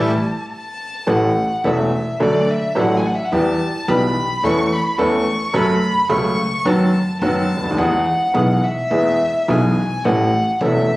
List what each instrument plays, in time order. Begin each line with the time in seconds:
Already playing: upright bass A1, bandoneon E4 G4 A4, violin A5
0.52 violin A5
1.07 upright piano A1 A2 E3 A3 C#4 A4, upright bass A1, violin F#5
1.64 upright bass E1, upright piano E1 E2 E3 A3 C#4 A4, violin E5
2.20 upright piano D2 D3 F#3 A3 D4 A4, upright bass D2, violin D5
2.51 violin E5
2.75 upright piano A1 A2 F#3 A3 D4 A4, upright bass A1
2.80 violin F#5
2.97 violin G#5
3.06 violin F#5
3.15 violin E5
3.25 violin F#5
3.32 upright piano E2 E3 G3 B3 G4, upright bass E2, violin A5
3.88 upright bass B1, upright piano B1 B2 E3 G3 B3 G4, violin B5
4.43 upright bass E2, upright piano E2 E3 A3 C#4 A4, violin C#6
4.73 violin B5
4.98 upright piano E2 E3 A3 C#4 A4, upright bass E2, violin C#6
5.54 upright bass F#1, upright piano F#2 F#3 A3 C#4 A4, violin B5
6.09 upright piano C#2 C#3 F#3 A3 C#4 A4, upright bass C#2, violin C#6
6.65 upright bass F#1, upright piano F#2 D#3 F#3 B3 F#4, violin A5
7.22 upright bass F#1, upright piano F#2 D#3 F#3 B3 F#4, violin A5
7.57 upright bass C#2, upright piano C#2
7.64 upright piano D2, upright bass D2
7.71 upright piano D#2, upright bass D#2
7.77 upright piano E2 E3 G#3 B3 G#4, upright bass E2, violin F#5
8.34 upright piano B1 B2 E3 G#3 B3 G#4, upright bass B1
8.64 violin E5
8.91 upright bass E2, upright piano E2 E3 G#3 B3 G#4
9.48 upright bass B1, upright piano B1 B2 E3 G#3 B3 G#4, violin G#5
10.05 upright bass A1, upright piano A1 A2 E3 A3 C#4 A4, violin F#5
10.61 upright bass E1, upright piano E1 E2 E3 A3 C#4 A4, violin E5